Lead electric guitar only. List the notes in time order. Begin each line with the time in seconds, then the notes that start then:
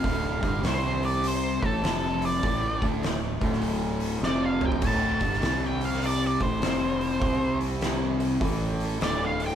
Already playing: F5
0.67 C5
1.05 D5
1.27 C5
1.66 A4
2.26 D5
4.24 D5
4.45 F5
4.66 G5
4.87 A5
5.66 G5
5.85 F5
6.05 D5
6.27 D5
6.42 C5
9.03 D5
9.25 F5
9.46 G5